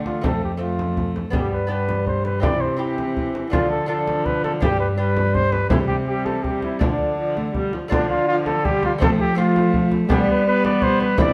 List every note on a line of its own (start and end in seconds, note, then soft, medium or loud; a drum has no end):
0.00 0.21 D3 soft
0.00 0.26 D3 medium
0.00 0.20 A3 soft
0.00 0.24 A3 medium
0.00 0.22 D4 soft
0.06 0.24 F4 medium
0.06 frame drum soft
0.21 1.33 F2 medium
0.21 0.56 A3 soft
0.21 0.61 A3 medium
0.21 0.57 C4 soft
0.21 0.43 A4 medium
0.21 frame drum medium
0.26 1.31 F2 soft
0.44 0.52 G4 medium
0.57 1.30 A3 soft
0.57 1.30 C4 soft
0.57 1.15 F4 medium
0.62 1.34 A3 medium
0.79 frame drum soft
0.97 frame drum soft
1.16 frame drum soft
1.30 2.45 G2 soft
1.30 2.40 G2 soft
1.30 1.66 B3 soft
1.30 1.67 D4 soft
1.30 1.68 G4 soft
1.30 frame drum medium
1.35 1.70 G3 medium
1.35 1.52 G4 medium
1.53 1.70 B4 medium
1.67 2.46 G3 medium
1.67 2.40 B3 soft
1.67 2.40 D4 soft
1.67 2.41 G4 soft
1.67 2.06 B4 medium
1.89 frame drum soft
2.07 2.25 C5 medium
2.07 frame drum soft
2.25 2.42 B4 medium
2.25 frame drum soft
2.40 3.49 C3 soft
2.40 3.53 C3 medium
2.40 2.75 C4 soft
2.40 2.77 E4 soft
2.40 2.78 G4 soft
2.40 2.62 D5 medium
2.40 frame drum medium
2.44 2.80 E3 medium
2.61 2.78 C5 medium
2.77 3.56 E3 medium
2.77 3.49 C4 soft
2.77 3.50 E4 soft
2.77 3.33 G4 medium
2.77 3.50 G4 soft
2.98 frame drum soft
3.17 frame drum soft
3.35 frame drum soft
3.50 4.64 D3 medium
3.50 4.58 D3 medium
3.50 3.85 A3 soft
3.50 3.87 D4 soft
3.50 3.69 F4 medium
3.50 3.88 F4 soft
3.50 frame drum medium
3.54 3.89 F3 medium
3.71 3.88 A4 medium
3.86 4.64 F3 medium
3.86 4.58 A3 soft
3.86 4.59 D4 soft
3.86 4.60 F4 soft
3.86 4.27 A4 medium
4.08 frame drum soft
4.25 4.44 B4 medium
4.25 frame drum soft
4.44 4.52 A4 medium
4.44 frame drum medium
4.61 5.71 G2 medium
4.61 5.68 G2 medium
4.61 4.99 G3 medium
4.61 4.96 D4 soft
4.61 4.97 G4 soft
4.61 4.79 G4 loud
4.61 frame drum medium
4.80 4.88 B4 medium
4.97 5.70 G3 medium
4.97 5.69 D4 soft
4.97 5.69 G4 soft
4.97 5.36 B4 medium
5.17 frame drum medium
5.34 5.54 C5 loud
5.34 frame drum soft
5.52 5.69 B4 medium
5.52 frame drum soft
5.70 6.83 C3 medium
5.70 6.78 C3 medium
5.70 6.07 G3 medium
5.70 6.77 C4 soft
5.70 5.78 E4 medium
5.70 6.78 G4 soft
5.70 frame drum medium
5.88 5.96 G4 medium
6.07 6.44 G3 medium
6.07 6.27 G4 medium
6.25 6.45 A4 medium
6.25 frame drum soft
6.43 6.83 G3 medium
6.43 6.62 G4 medium
6.43 frame drum soft
6.62 6.79 E4 medium
6.62 frame drum soft
6.79 7.74 D3 medium
6.79 7.70 D3 soft
6.79 7.15 F3 medium
6.79 7.87 A3 soft
6.79 7.53 D4 medium
6.79 7.88 D4 soft
6.79 frame drum medium
7.18 7.38 F3 medium
7.37 7.54 A3 medium
7.37 frame drum soft
7.54 7.75 G3 medium
7.54 frame drum soft
7.73 7.91 F3 medium
7.73 frame drum soft
7.88 9.02 D3 medium
7.88 8.98 D3 medium
7.88 8.26 F3 medium
7.88 8.96 A3 medium
7.88 8.97 D4 medium
7.88 8.09 D4 medium
7.88 8.98 F4 medium
7.88 frame drum medium
8.09 8.27 F4 loud
8.27 8.64 F3 medium
8.27 8.36 F4 loud
8.46 8.66 A4 loud
8.46 frame drum medium
8.65 9.01 G3 medium
8.65 8.83 G4 loud
8.65 frame drum medium
8.83 8.93 F4 medium
8.83 frame drum soft
8.98 10.10 F3 medium
8.98 10.07 F3 medium
8.98 9.34 A3 medium
8.98 9.37 A3 medium
8.98 9.35 C4 medium
8.98 9.36 F4 medium
8.98 9.10 A4 loud
8.98 frame drum medium
9.20 9.37 G4 loud
9.35 10.07 A3 medium
9.35 10.13 A3 medium
9.35 10.08 C4 medium
9.35 10.09 F4 medium
9.35 9.92 F4 loud
9.56 frame drum soft
9.74 frame drum soft
9.92 frame drum soft
10.09 11.20 G3 medium
10.09 11.16 G3 medium
10.09 11.15 B3 medium
10.09 10.47 B3 medium
10.09 11.16 D4 medium
10.09 10.27 G4 loud
10.09 frame drum medium
10.29 10.47 B4 medium
10.47 11.18 B3 medium
10.47 10.65 B4 loud
10.65 10.84 D5 loud
10.65 frame drum medium
10.82 11.01 C5 loud
10.82 frame drum soft
11.00 11.19 B4 loud
11.00 frame drum medium
11.17 11.33 C3 medium
11.17 11.33 C4 medium
11.17 11.33 E4 medium
11.17 11.33 D5 loud
11.17 frame drum medium